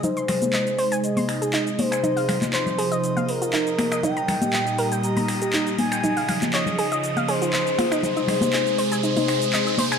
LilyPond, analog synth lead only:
\new Staff \with { instrumentName = "Analog synth lead" } { \time 4/4 \key aes \major \tempo 4 = 120 c''2 ees''4. c''8~ | c''4 c''4. bes'4. | g''2 bes''4. aes''8~ | aes''4 ees''4. c''4. |
c''2 c''2 | }